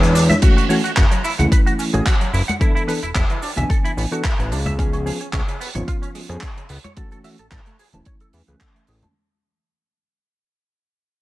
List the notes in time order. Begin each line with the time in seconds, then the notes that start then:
Already playing: E2 G#3 D4 E4 C#5
0.02 E3, closed hi-hat, cabasa, shaker
0.15 D4, open hi-hat, cabasa, shaker
0.30 E5, closed hi-hat, high conga, cabasa, shaker
0.42 E3 A3 C#4 F#4, kick, closed hi-hat, crash, cabasa
0.57 F#4, closed hi-hat, cabasa
0.69 E3 A3 C#4 F#4 C#5, open hi-hat, cabasa
0.84 F#4, closed hi-hat, cabasa
0.97 F#1 F#4, kick, clap, closed hi-hat, cabasa
1.11 F#3, closed hi-hat, cabasa
1.24 E4, open hi-hat, cabasa
1.39 C#2 E3 A3 C#4 E4 F#5, closed hi-hat, low conga, cabasa
1.52 B4, kick, closed hi-hat, cabasa
1.66 F#4, closed hi-hat, cabasa
1.79 C#4, open hi-hat, cabasa
1.93 A1 E3 A3 C#4 F#4 G#4, closed hi-hat, cabasa
2.06 F#4, kick, clap, closed hi-hat, cabasa
2.21 F#3, closed hi-hat, cabasa
2.33 F#1 E4, open hi-hat, cabasa
2.48 F#5, closed hi-hat, high conga, cabasa
2.60 E3 B3 D4 E4 A4, kick, closed hi-hat, cabasa
2.75 E4, closed hi-hat, cabasa
2.88 E3 B3 D4 A4 B4, open hi-hat, cabasa
3.03 E1 E4, closed hi-hat, cabasa
3.15 E1 E4, kick, clap, closed hi-hat, cabasa
3.30 E3, closed hi-hat, cabasa
3.42 D4, open hi-hat, cabasa
3.56 B1 E3 B3 D4 E5 G#5, closed hi-hat, low conga, cabasa
3.70 A4, kick, closed hi-hat, cabasa
3.85 E4, closed hi-hat, cabasa
3.97 A1 B3, open hi-hat, cabasa
4.11 E3 B3 D4 F#4 A4, closed hi-hat, cabasa
4.24 E4, kick, clap, closed hi-hat, cabasa
4.39 A1 E3, closed hi-hat, cabasa
4.52 C#2 D4, open hi-hat, cabasa
4.66 E5, closed hi-hat, high conga, low conga, cabasa
4.78 F3 B3 C#4 G#4, kick, closed hi-hat, cabasa
4.93 C#4, closed hi-hat, cabasa
5.05 F3 B3 C#4 G#4, open hi-hat, cabasa
5.21 C#4, closed hi-hat, cabasa
5.33 C#2 C#4, kick, clap, closed hi-hat, cabasa
5.48 C#3, closed hi-hat, cabasa
5.60 B3, open hi-hat, cabasa
5.75 G#1 F3 B3 C#4 F4 C#5, closed hi-hat, low conga, cabasa
5.88 F4, kick, closed hi-hat, cabasa
6.02 C#4, closed hi-hat, cabasa
6.15 G#3, open hi-hat, cabasa
6.29 F2 F3 B3 C#4 G#4, closed hi-hat, cabasa
6.41 C#4, kick, clap, closed hi-hat, cabasa
6.57 C#3, closed hi-hat, cabasa
6.69 C#2 B3, open hi-hat, cabasa
6.84 C#5, closed hi-hat, high conga, cabasa
6.96 E3 A3 C#4 F#4 A4, kick, closed hi-hat, cabasa
7.11 A4, closed hi-hat, cabasa
7.24 E3 A3 C#4 F#4 E5, open hi-hat, cabasa
7.38 A1 A4, closed hi-hat, cabasa
7.51 A1 A4, kick, clap, closed hi-hat, cabasa
7.66 A3, closed hi-hat, cabasa
7.79 G#4, open hi-hat, cabasa
7.93 E1 E3 A3 C#4 E4 A5, closed hi-hat, low conga, cabasa
8.05 C#5, kick, closed hi-hat, cabasa
8.20 A4, closed hi-hat, cabasa
8.33 E2 E4, open hi-hat, cabasa
8.47 C#2 E3 A3 C#4 B4, closed hi-hat, cabasa
8.60 A4, kick, clap, closed hi-hat, cabasa
8.76 A3, closed hi-hat
8.87 A1 G#4, open hi-hat, cabasa
9.02 A5, closed hi-hat, high conga, low conga, cabasa